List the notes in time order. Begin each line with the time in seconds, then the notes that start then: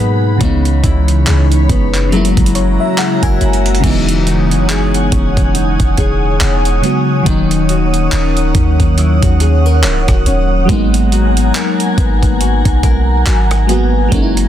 Already playing: G#2 B2 F#3 G#3 A#3 D#4 G#4 F#5 B5
0.00 B3
0.37 C#2 C#3 E3 G#3 C#5, kick, closed hi-hat
0.43 B3 D#4
0.65 closed hi-hat
0.84 C#2 E4, kick, closed hi-hat
1.08 closed hi-hat
1.27 C#2 G#4, clap, closed hi-hat
1.52 closed hi-hat
1.69 F#1 B3, kick, closed hi-hat
1.94 clap, closed hi-hat
2.09 C#3 F#3 G#3 F#4 E5 A#5, closed hi-hat
2.14 A#3 E4
2.25 closed hi-hat
2.37 F#1, kick, closed hi-hat
2.46 closed hi-hat
2.55 C#4 C#5, closed hi-hat
2.80 E5
2.98 G#4 F#5, clap, closed hi-hat
3.23 F#1 A#4 G#5, kick, closed hi-hat
3.41 F#1 E4, closed hi-hat
3.53 closed hi-hat
3.66 closed hi-hat
3.75 closed hi-hat
3.80 E1 C#3 E3 F#3 G#3 C#5 F#5 G#5 D#6, kick, closed hi-hat, crash
3.86 B3 D#4
4.09 closed hi-hat
4.27 D#4, closed hi-hat
4.51 F#1, closed hi-hat
4.70 G#4, clap, closed hi-hat
4.94 closed hi-hat
5.12 E1 C#4, kick, closed hi-hat
5.37 kick, closed hi-hat
5.55 D#4, closed hi-hat
5.80 E1, kick, closed hi-hat
5.97 G#4, kick, closed hi-hat
6.41 E1 D#4, clap, closed hi-hat
6.65 closed hi-hat
6.82 C#3 F#3 G#3 B3 C#4 F#4, closed hi-hat
7.23 D#1 D#3 F#3 A#3, kick, closed hi-hat
7.27 C#4 D#4 F#5
7.51 closed hi-hat
7.69 F#4, closed hi-hat
7.94 closed hi-hat
8.12 D#1 A#4, clap, closed hi-hat
8.37 closed hi-hat
8.55 D#2 C#4, kick, closed hi-hat
8.80 kick, closed hi-hat
8.98 E4, closed hi-hat
9.22 D#2 F#4, kick, closed hi-hat
9.40 G#4, closed hi-hat
9.66 A#4
9.83 C#1 E4, clap, closed hi-hat
10.08 D#1 F#4, kick, cross-stick, closed hi-hat
10.26 D#1 C#4, closed hi-hat
10.65 G#1 F#3 G#3 A#3 G#5 A#5, kick, closed hi-hat
10.71 B3 D#4
10.94 closed hi-hat
11.12 F#4, closed hi-hat
11.37 closed hi-hat
11.55 A#4, clap, closed hi-hat
11.80 closed hi-hat
11.98 G#1 B3, kick, closed hi-hat
12.23 kick, closed hi-hat
12.41 F#4, closed hi-hat
12.65 B1, kick, closed hi-hat
12.83 A#4, kick, closed hi-hat
13.26 G#1 F#4, clap, closed hi-hat
13.51 cross-stick, closed hi-hat
13.67 F#3 G#3 A#3 B3 F#4, closed hi-hat
14.08 F#1 F#3 G#3 A#3 G#4 E5 A#5, kick, closed hi-hat
14.14 C#4 D#4
14.22 E4
14.37 closed hi-hat